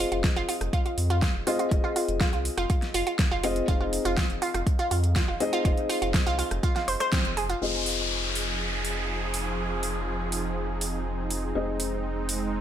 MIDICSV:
0, 0, Header, 1, 7, 480
1, 0, Start_track
1, 0, Key_signature, -4, "minor"
1, 0, Tempo, 491803
1, 1674, Time_signature, 4, 2, 24, 8
1, 12305, End_track
2, 0, Start_track
2, 0, Title_t, "Felt piano"
2, 0, Program_c, 0, 0
2, 0, Note_on_c, 0, 60, 90
2, 0, Note_on_c, 0, 65, 81
2, 0, Note_on_c, 0, 68, 84
2, 0, Note_on_c, 0, 75, 103
2, 1405, Note_off_c, 0, 60, 0
2, 1405, Note_off_c, 0, 65, 0
2, 1405, Note_off_c, 0, 68, 0
2, 1405, Note_off_c, 0, 75, 0
2, 1434, Note_on_c, 0, 60, 93
2, 1434, Note_on_c, 0, 65, 86
2, 1434, Note_on_c, 0, 68, 85
2, 1434, Note_on_c, 0, 75, 101
2, 1645, Note_off_c, 0, 60, 0
2, 1645, Note_off_c, 0, 65, 0
2, 1645, Note_off_c, 0, 75, 0
2, 1646, Note_off_c, 0, 68, 0
2, 1673, Note_on_c, 0, 65, 86
2, 1673, Note_on_c, 0, 68, 86
2, 1673, Note_on_c, 0, 75, 102
2, 1674, Note_on_c, 0, 60, 92
2, 3325, Note_off_c, 0, 60, 0
2, 3325, Note_off_c, 0, 65, 0
2, 3325, Note_off_c, 0, 68, 0
2, 3325, Note_off_c, 0, 75, 0
2, 3354, Note_on_c, 0, 60, 93
2, 3354, Note_on_c, 0, 65, 86
2, 3354, Note_on_c, 0, 68, 84
2, 3354, Note_on_c, 0, 75, 105
2, 3565, Note_off_c, 0, 60, 0
2, 3565, Note_off_c, 0, 65, 0
2, 3565, Note_off_c, 0, 68, 0
2, 3565, Note_off_c, 0, 75, 0
2, 3594, Note_on_c, 0, 60, 94
2, 3594, Note_on_c, 0, 63, 88
2, 3594, Note_on_c, 0, 68, 86
2, 3594, Note_on_c, 0, 75, 100
2, 5245, Note_off_c, 0, 60, 0
2, 5245, Note_off_c, 0, 63, 0
2, 5245, Note_off_c, 0, 68, 0
2, 5245, Note_off_c, 0, 75, 0
2, 5274, Note_on_c, 0, 60, 96
2, 5274, Note_on_c, 0, 63, 87
2, 5274, Note_on_c, 0, 75, 107
2, 5275, Note_on_c, 0, 68, 90
2, 5486, Note_off_c, 0, 60, 0
2, 5486, Note_off_c, 0, 63, 0
2, 5486, Note_off_c, 0, 68, 0
2, 5486, Note_off_c, 0, 75, 0
2, 5514, Note_on_c, 0, 60, 93
2, 5514, Note_on_c, 0, 63, 89
2, 5514, Note_on_c, 0, 68, 85
2, 5514, Note_on_c, 0, 75, 104
2, 7166, Note_off_c, 0, 60, 0
2, 7166, Note_off_c, 0, 63, 0
2, 7166, Note_off_c, 0, 68, 0
2, 7166, Note_off_c, 0, 75, 0
2, 7434, Note_on_c, 0, 60, 71
2, 7434, Note_on_c, 0, 65, 65
2, 7434, Note_on_c, 0, 68, 66
2, 7434, Note_on_c, 0, 75, 79
2, 11245, Note_off_c, 0, 60, 0
2, 11245, Note_off_c, 0, 65, 0
2, 11245, Note_off_c, 0, 68, 0
2, 11245, Note_off_c, 0, 75, 0
2, 11274, Note_on_c, 0, 60, 75
2, 11274, Note_on_c, 0, 63, 65
2, 11274, Note_on_c, 0, 68, 67
2, 11274, Note_on_c, 0, 75, 81
2, 12305, Note_off_c, 0, 60, 0
2, 12305, Note_off_c, 0, 63, 0
2, 12305, Note_off_c, 0, 68, 0
2, 12305, Note_off_c, 0, 75, 0
2, 12305, End_track
3, 0, Start_track
3, 0, Title_t, "Synth pluck"
3, 0, Program_c, 1, 84
3, 116, Note_on_c, 1, 65, 71
3, 191, Note_off_c, 1, 65, 0
3, 356, Note_on_c, 1, 65, 100
3, 431, Note_off_c, 1, 65, 0
3, 474, Note_on_c, 1, 65, 76
3, 551, Note_off_c, 1, 65, 0
3, 714, Note_on_c, 1, 65, 104
3, 792, Note_off_c, 1, 65, 0
3, 836, Note_on_c, 1, 65, 76
3, 911, Note_off_c, 1, 65, 0
3, 1076, Note_on_c, 1, 65, 100
3, 1151, Note_off_c, 1, 65, 0
3, 1194, Note_on_c, 1, 65, 81
3, 1272, Note_off_c, 1, 65, 0
3, 1434, Note_on_c, 1, 65, 99
3, 1511, Note_off_c, 1, 65, 0
3, 1555, Note_on_c, 1, 65, 76
3, 1631, Note_off_c, 1, 65, 0
3, 1795, Note_on_c, 1, 65, 97
3, 1871, Note_off_c, 1, 65, 0
3, 1913, Note_on_c, 1, 65, 74
3, 1991, Note_off_c, 1, 65, 0
3, 2152, Note_on_c, 1, 65, 100
3, 2231, Note_off_c, 1, 65, 0
3, 2274, Note_on_c, 1, 65, 76
3, 2350, Note_off_c, 1, 65, 0
3, 2514, Note_on_c, 1, 65, 97
3, 2591, Note_off_c, 1, 65, 0
3, 2633, Note_on_c, 1, 65, 80
3, 2711, Note_off_c, 1, 65, 0
3, 2873, Note_on_c, 1, 65, 100
3, 2951, Note_off_c, 1, 65, 0
3, 2994, Note_on_c, 1, 65, 76
3, 3070, Note_off_c, 1, 65, 0
3, 3235, Note_on_c, 1, 65, 95
3, 3311, Note_off_c, 1, 65, 0
3, 3354, Note_on_c, 1, 65, 76
3, 3431, Note_off_c, 1, 65, 0
3, 3593, Note_on_c, 1, 65, 102
3, 3671, Note_off_c, 1, 65, 0
3, 3715, Note_on_c, 1, 65, 74
3, 3791, Note_off_c, 1, 65, 0
3, 3955, Note_on_c, 1, 65, 99
3, 4031, Note_off_c, 1, 65, 0
3, 4074, Note_on_c, 1, 65, 82
3, 4151, Note_off_c, 1, 65, 0
3, 4314, Note_on_c, 1, 65, 101
3, 4391, Note_off_c, 1, 65, 0
3, 4435, Note_on_c, 1, 65, 75
3, 4511, Note_off_c, 1, 65, 0
3, 4675, Note_on_c, 1, 65, 100
3, 4751, Note_off_c, 1, 65, 0
3, 4794, Note_on_c, 1, 65, 74
3, 4871, Note_off_c, 1, 65, 0
3, 5034, Note_on_c, 1, 65, 101
3, 5111, Note_off_c, 1, 65, 0
3, 5156, Note_on_c, 1, 65, 76
3, 5231, Note_off_c, 1, 65, 0
3, 5396, Note_on_c, 1, 65, 100
3, 5471, Note_off_c, 1, 65, 0
3, 5514, Note_on_c, 1, 65, 81
3, 5591, Note_off_c, 1, 65, 0
3, 5753, Note_on_c, 1, 65, 102
3, 5831, Note_off_c, 1, 65, 0
3, 5875, Note_on_c, 1, 65, 74
3, 5951, Note_off_c, 1, 65, 0
3, 6115, Note_on_c, 1, 65, 100
3, 6191, Note_off_c, 1, 65, 0
3, 6233, Note_on_c, 1, 65, 78
3, 6311, Note_off_c, 1, 65, 0
3, 6473, Note_on_c, 1, 65, 101
3, 6551, Note_off_c, 1, 65, 0
3, 6595, Note_on_c, 1, 65, 76
3, 6671, Note_off_c, 1, 65, 0
3, 6714, Note_on_c, 1, 72, 76
3, 6791, Note_off_c, 1, 72, 0
3, 6835, Note_on_c, 1, 72, 102
3, 6911, Note_off_c, 1, 72, 0
3, 6953, Note_on_c, 1, 60, 100
3, 7000, Note_off_c, 1, 60, 0
3, 7194, Note_on_c, 1, 68, 78
3, 7271, Note_off_c, 1, 68, 0
3, 7316, Note_on_c, 1, 65, 77
3, 7391, Note_off_c, 1, 65, 0
3, 12305, End_track
4, 0, Start_track
4, 0, Title_t, "Supersaw synth"
4, 0, Program_c, 2, 81
4, 7434, Note_on_c, 2, 53, 79
4, 7434, Note_on_c, 2, 60, 72
4, 7434, Note_on_c, 2, 63, 72
4, 7434, Note_on_c, 2, 68, 86
4, 11236, Note_off_c, 2, 53, 0
4, 11236, Note_off_c, 2, 68, 0
4, 11273, Note_on_c, 2, 56, 80
4, 12305, Note_off_c, 2, 56, 0
4, 12305, Note_off_c, 2, 60, 0
4, 12305, Note_off_c, 2, 63, 0
4, 12305, End_track
5, 0, Start_track
5, 0, Title_t, "Analog synth bass"
5, 0, Program_c, 3, 38
5, 115, Note_on_c, 3, 29, 85
5, 268, Note_off_c, 3, 29, 0
5, 355, Note_on_c, 3, 29, 88
5, 431, Note_off_c, 3, 29, 0
5, 595, Note_on_c, 3, 29, 87
5, 671, Note_off_c, 3, 29, 0
5, 952, Note_on_c, 3, 41, 94
5, 1245, Note_off_c, 3, 41, 0
5, 1314, Note_on_c, 3, 29, 89
5, 1391, Note_off_c, 3, 29, 0
5, 1674, Note_on_c, 3, 29, 93
5, 1752, Note_off_c, 3, 29, 0
5, 2035, Note_on_c, 3, 29, 81
5, 2188, Note_off_c, 3, 29, 0
5, 2276, Note_on_c, 3, 36, 82
5, 2428, Note_off_c, 3, 36, 0
5, 2515, Note_on_c, 3, 29, 83
5, 2591, Note_off_c, 3, 29, 0
5, 2874, Note_on_c, 3, 29, 103
5, 2952, Note_off_c, 3, 29, 0
5, 3235, Note_on_c, 3, 29, 89
5, 3526, Note_off_c, 3, 29, 0
5, 3593, Note_on_c, 3, 29, 99
5, 3885, Note_off_c, 3, 29, 0
5, 3955, Note_on_c, 3, 29, 87
5, 4108, Note_off_c, 3, 29, 0
5, 4195, Note_on_c, 3, 29, 91
5, 4271, Note_off_c, 3, 29, 0
5, 4436, Note_on_c, 3, 29, 85
5, 4512, Note_off_c, 3, 29, 0
5, 4794, Note_on_c, 3, 41, 97
5, 5086, Note_off_c, 3, 41, 0
5, 5155, Note_on_c, 3, 29, 92
5, 5231, Note_off_c, 3, 29, 0
5, 5514, Note_on_c, 3, 29, 93
5, 5592, Note_off_c, 3, 29, 0
5, 5875, Note_on_c, 3, 29, 83
5, 6028, Note_off_c, 3, 29, 0
5, 6116, Note_on_c, 3, 36, 81
5, 6268, Note_off_c, 3, 36, 0
5, 6355, Note_on_c, 3, 29, 84
5, 6431, Note_off_c, 3, 29, 0
5, 6714, Note_on_c, 3, 29, 102
5, 6792, Note_off_c, 3, 29, 0
5, 7075, Note_on_c, 3, 29, 90
5, 7366, Note_off_c, 3, 29, 0
5, 7433, Note_on_c, 3, 29, 85
5, 11250, Note_off_c, 3, 29, 0
5, 11273, Note_on_c, 3, 29, 82
5, 12305, Note_off_c, 3, 29, 0
5, 12305, End_track
6, 0, Start_track
6, 0, Title_t, "Downlifter"
6, 0, Program_c, 4, 103
6, 7434, Note_on_c, 4, 60, 67
6, 11274, Note_off_c, 4, 60, 0
6, 12305, End_track
7, 0, Start_track
7, 0, Title_t, "Drums"
7, 115, Note_on_c, 9, 42, 46
7, 213, Note_off_c, 9, 42, 0
7, 234, Note_on_c, 9, 36, 119
7, 234, Note_on_c, 9, 42, 73
7, 235, Note_on_c, 9, 38, 109
7, 331, Note_off_c, 9, 42, 0
7, 332, Note_off_c, 9, 36, 0
7, 332, Note_off_c, 9, 38, 0
7, 356, Note_on_c, 9, 42, 33
7, 453, Note_off_c, 9, 42, 0
7, 475, Note_on_c, 9, 46, 96
7, 572, Note_off_c, 9, 46, 0
7, 596, Note_on_c, 9, 37, 73
7, 596, Note_on_c, 9, 42, 45
7, 694, Note_off_c, 9, 37, 0
7, 694, Note_off_c, 9, 42, 0
7, 714, Note_on_c, 9, 36, 114
7, 715, Note_on_c, 9, 42, 71
7, 812, Note_off_c, 9, 36, 0
7, 812, Note_off_c, 9, 42, 0
7, 836, Note_on_c, 9, 42, 34
7, 934, Note_off_c, 9, 42, 0
7, 954, Note_on_c, 9, 46, 94
7, 1051, Note_off_c, 9, 46, 0
7, 1076, Note_on_c, 9, 42, 47
7, 1173, Note_off_c, 9, 42, 0
7, 1194, Note_on_c, 9, 36, 116
7, 1194, Note_on_c, 9, 42, 72
7, 1195, Note_on_c, 9, 38, 107
7, 1291, Note_off_c, 9, 36, 0
7, 1291, Note_off_c, 9, 42, 0
7, 1292, Note_off_c, 9, 38, 0
7, 1434, Note_on_c, 9, 46, 101
7, 1531, Note_off_c, 9, 46, 0
7, 1555, Note_on_c, 9, 42, 50
7, 1652, Note_off_c, 9, 42, 0
7, 1673, Note_on_c, 9, 42, 73
7, 1674, Note_on_c, 9, 36, 105
7, 1771, Note_off_c, 9, 36, 0
7, 1771, Note_off_c, 9, 42, 0
7, 1913, Note_on_c, 9, 46, 97
7, 2010, Note_off_c, 9, 46, 0
7, 2034, Note_on_c, 9, 42, 50
7, 2132, Note_off_c, 9, 42, 0
7, 2153, Note_on_c, 9, 36, 114
7, 2153, Note_on_c, 9, 42, 76
7, 2154, Note_on_c, 9, 38, 108
7, 2250, Note_off_c, 9, 42, 0
7, 2251, Note_off_c, 9, 36, 0
7, 2252, Note_off_c, 9, 38, 0
7, 2274, Note_on_c, 9, 42, 35
7, 2372, Note_off_c, 9, 42, 0
7, 2392, Note_on_c, 9, 46, 96
7, 2490, Note_off_c, 9, 46, 0
7, 2513, Note_on_c, 9, 37, 76
7, 2513, Note_on_c, 9, 42, 49
7, 2611, Note_off_c, 9, 37, 0
7, 2611, Note_off_c, 9, 42, 0
7, 2632, Note_on_c, 9, 42, 78
7, 2633, Note_on_c, 9, 36, 107
7, 2730, Note_off_c, 9, 42, 0
7, 2731, Note_off_c, 9, 36, 0
7, 2754, Note_on_c, 9, 42, 36
7, 2755, Note_on_c, 9, 38, 35
7, 2852, Note_off_c, 9, 42, 0
7, 2853, Note_off_c, 9, 38, 0
7, 2872, Note_on_c, 9, 46, 92
7, 2970, Note_off_c, 9, 46, 0
7, 2994, Note_on_c, 9, 42, 50
7, 3091, Note_off_c, 9, 42, 0
7, 3112, Note_on_c, 9, 42, 77
7, 3113, Note_on_c, 9, 38, 110
7, 3114, Note_on_c, 9, 36, 115
7, 3210, Note_off_c, 9, 42, 0
7, 3211, Note_off_c, 9, 36, 0
7, 3211, Note_off_c, 9, 38, 0
7, 3352, Note_on_c, 9, 46, 99
7, 3450, Note_off_c, 9, 46, 0
7, 3474, Note_on_c, 9, 42, 51
7, 3572, Note_off_c, 9, 42, 0
7, 3593, Note_on_c, 9, 42, 80
7, 3594, Note_on_c, 9, 36, 106
7, 3690, Note_off_c, 9, 42, 0
7, 3691, Note_off_c, 9, 36, 0
7, 3834, Note_on_c, 9, 46, 97
7, 3931, Note_off_c, 9, 46, 0
7, 3956, Note_on_c, 9, 42, 53
7, 4053, Note_off_c, 9, 42, 0
7, 4074, Note_on_c, 9, 36, 116
7, 4074, Note_on_c, 9, 42, 79
7, 4075, Note_on_c, 9, 38, 115
7, 4172, Note_off_c, 9, 36, 0
7, 4172, Note_off_c, 9, 42, 0
7, 4173, Note_off_c, 9, 38, 0
7, 4195, Note_on_c, 9, 42, 36
7, 4293, Note_off_c, 9, 42, 0
7, 4314, Note_on_c, 9, 46, 95
7, 4411, Note_off_c, 9, 46, 0
7, 4436, Note_on_c, 9, 37, 74
7, 4436, Note_on_c, 9, 42, 50
7, 4533, Note_off_c, 9, 37, 0
7, 4533, Note_off_c, 9, 42, 0
7, 4554, Note_on_c, 9, 36, 107
7, 4554, Note_on_c, 9, 42, 79
7, 4652, Note_off_c, 9, 36, 0
7, 4652, Note_off_c, 9, 42, 0
7, 4676, Note_on_c, 9, 42, 37
7, 4774, Note_off_c, 9, 42, 0
7, 4794, Note_on_c, 9, 46, 94
7, 4892, Note_off_c, 9, 46, 0
7, 4915, Note_on_c, 9, 42, 51
7, 5013, Note_off_c, 9, 42, 0
7, 5034, Note_on_c, 9, 36, 114
7, 5035, Note_on_c, 9, 42, 82
7, 5036, Note_on_c, 9, 38, 117
7, 5132, Note_off_c, 9, 36, 0
7, 5132, Note_off_c, 9, 42, 0
7, 5134, Note_off_c, 9, 38, 0
7, 5274, Note_on_c, 9, 46, 98
7, 5372, Note_off_c, 9, 46, 0
7, 5397, Note_on_c, 9, 42, 55
7, 5494, Note_off_c, 9, 42, 0
7, 5514, Note_on_c, 9, 36, 108
7, 5515, Note_on_c, 9, 42, 81
7, 5612, Note_off_c, 9, 36, 0
7, 5613, Note_off_c, 9, 42, 0
7, 5637, Note_on_c, 9, 42, 37
7, 5734, Note_off_c, 9, 42, 0
7, 5755, Note_on_c, 9, 37, 58
7, 5755, Note_on_c, 9, 46, 98
7, 5852, Note_off_c, 9, 37, 0
7, 5852, Note_off_c, 9, 46, 0
7, 5876, Note_on_c, 9, 42, 55
7, 5973, Note_off_c, 9, 42, 0
7, 5994, Note_on_c, 9, 36, 115
7, 5994, Note_on_c, 9, 42, 84
7, 5995, Note_on_c, 9, 38, 117
7, 6092, Note_off_c, 9, 36, 0
7, 6092, Note_off_c, 9, 42, 0
7, 6093, Note_off_c, 9, 38, 0
7, 6117, Note_on_c, 9, 42, 37
7, 6214, Note_off_c, 9, 42, 0
7, 6234, Note_on_c, 9, 46, 97
7, 6332, Note_off_c, 9, 46, 0
7, 6356, Note_on_c, 9, 37, 74
7, 6356, Note_on_c, 9, 42, 53
7, 6454, Note_off_c, 9, 37, 0
7, 6454, Note_off_c, 9, 42, 0
7, 6474, Note_on_c, 9, 36, 109
7, 6474, Note_on_c, 9, 42, 85
7, 6572, Note_off_c, 9, 36, 0
7, 6572, Note_off_c, 9, 42, 0
7, 6596, Note_on_c, 9, 42, 37
7, 6597, Note_on_c, 9, 38, 37
7, 6694, Note_off_c, 9, 42, 0
7, 6695, Note_off_c, 9, 38, 0
7, 6714, Note_on_c, 9, 46, 97
7, 6812, Note_off_c, 9, 46, 0
7, 6836, Note_on_c, 9, 37, 82
7, 6836, Note_on_c, 9, 42, 54
7, 6934, Note_off_c, 9, 37, 0
7, 6934, Note_off_c, 9, 42, 0
7, 6954, Note_on_c, 9, 36, 120
7, 6955, Note_on_c, 9, 42, 83
7, 6956, Note_on_c, 9, 38, 120
7, 7052, Note_off_c, 9, 36, 0
7, 7052, Note_off_c, 9, 42, 0
7, 7053, Note_off_c, 9, 38, 0
7, 7076, Note_on_c, 9, 42, 39
7, 7174, Note_off_c, 9, 42, 0
7, 7194, Note_on_c, 9, 46, 101
7, 7292, Note_off_c, 9, 46, 0
7, 7316, Note_on_c, 9, 42, 56
7, 7413, Note_off_c, 9, 42, 0
7, 7674, Note_on_c, 9, 46, 93
7, 7771, Note_off_c, 9, 46, 0
7, 8154, Note_on_c, 9, 46, 92
7, 8251, Note_off_c, 9, 46, 0
7, 8634, Note_on_c, 9, 46, 90
7, 8731, Note_off_c, 9, 46, 0
7, 9113, Note_on_c, 9, 46, 96
7, 9211, Note_off_c, 9, 46, 0
7, 9593, Note_on_c, 9, 46, 100
7, 9691, Note_off_c, 9, 46, 0
7, 10073, Note_on_c, 9, 46, 97
7, 10171, Note_off_c, 9, 46, 0
7, 10553, Note_on_c, 9, 46, 94
7, 10651, Note_off_c, 9, 46, 0
7, 11034, Note_on_c, 9, 46, 97
7, 11131, Note_off_c, 9, 46, 0
7, 11514, Note_on_c, 9, 46, 102
7, 11611, Note_off_c, 9, 46, 0
7, 11993, Note_on_c, 9, 46, 99
7, 12091, Note_off_c, 9, 46, 0
7, 12305, End_track
0, 0, End_of_file